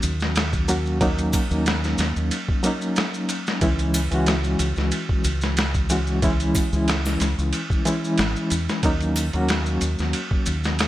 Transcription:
Already playing: F#3 A#3 C#4 F#4
0.02 D#2, ride, maracas
0.20 snare, maracas
0.35 snare, ride, maracas
0.53 kick, maracas
0.68 F#3 A#3 C#4 F#4, ride, maracas
0.86 maracas
1.01 F#3 A#3 C#4 D#4, kick, ride, maracas
1.18 ride, maracas
1.33 kick, ride, triangle, maracas
1.50 D#2 F#3 A#3 C#4 D#4, maracas
1.66 snare, ride, maracas
1.84 snare, maracas
1.98 D#2, snare, ride, maracas
2.16 D#2, maracas
2.31 ride, maracas
2.48 kick
2.63 F#3 A#3 C#4 D#4, ride, maracas
2.82 maracas
2.96 snare, ride, maracas
3.14 maracas
3.29 ride, maracas
3.47 snare, maracas
3.61 C#2 E3 G#3 C#4 E4, kick, ride, maracas
3.79 ride, maracas
3.94 ride, triangle, maracas
4.11 C#2 E3 G#3 C#4 F#4, ride, maracas
4.26 snare, ride, maracas
4.44 maracas
4.59 C#2, ride, maracas
4.76 C#2, snare, maracas
4.91 ride, maracas
5.09 kick
5.24 C#2, ride, maracas
5.41 snare, maracas
5.57 snare, ride, maracas
5.74 kick, maracas
5.90 E3 G#3 C#4 F#4, ride, maracas
6.07 maracas
6.22 E3 G#3 C#4 E4, kick, ride, maracas
6.40 ride, maracas
6.55 kick, ride, triangle, maracas
6.72 C#2 E3 G#3 C#4 E4, maracas
6.88 snare, ride, maracas
7.05 snare, triangle, maracas
7.20 C#2, snare, ride, maracas
7.38 C#2, maracas
7.53 ride, maracas
7.70 kick, maracas
7.85 E3 G#3 C#4 E4, ride, maracas
8.04 maracas
8.18 G#1, snare, ride, maracas
8.36 maracas
8.50 E2, ride, maracas
8.69 snare, maracas
8.83 D#2 F#3 A#3 C#4 D#4, kick, ride, maracas
9.00 ride, maracas
9.16 ride, triangle, maracas
9.33 D#2 F#3 A#3 C#4 F#4, ride, maracas
9.49 snare, ride, maracas
9.66 maracas
9.81 D#2, ride, maracas
9.99 D#2, snare, maracas
10.13 ride, maracas
10.31 kick
10.46 D#2, ride, maracas
10.64 snare, maracas
10.79 snare, ride, maracas

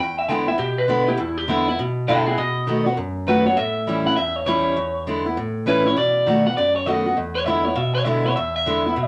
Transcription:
0.00 E2 G5
0.19 E5
0.28 D3 G#3 B3 E4 G5
0.48 B3 E4 E5
0.58 B2 G4
0.78 B4
0.88 D3 G#3 B3 E4 B4
1.08 B3 E4 G4
1.17 E2 E4
1.38 G4
1.48 D3 G#3 B3 E4
1.68 B3 E4
1.79 B2
2.08 D3 G#3 B3 E4 E5 G5
2.26 B3 E4 G#4 E5
2.38 B2 D#5
2.67 D#3 A3 B3 F#4
2.86 B3 F#4
2.97 F#2
3.27 D#3 A3 B3 F#4 B4
3.46 B3 F#4 C#5
3.57 A2 E5
3.87 E3 G3 C#4 E4
4.06 C#4 E4 F#5
4.16 E2 E5
4.36 C#5
4.46 E3 G3 C#4 E4 C#5
4.76 E2
5.07 D3 G#3 B3 E4
5.26 B3 E4
5.37 A2
5.66 E3 G3 C#4 E4 B4
5.85 C#4 E4 C#5
5.97 B2 D5
6.26 D#3 A3 B3 F#4
6.46 B3 F#4 F#5
6.57 F#2 D5
6.76 C#5
6.86 D#3 A3 B3 F#4 D#5
7.06 B3 F#4
7.17 E2
7.35 C#5
7.46 D3 G#3 B3 E4 E5
7.65 B3 E4 C#5
7.75 B2 E5
7.95 C#5
8.04 D3 G#3 B3 E4 E5
8.26 B3 E4 C#5
8.36 E2 E5
8.56 E5
8.66 D3 G#3 B3 E4
8.86 B3 E4
8.96 B2

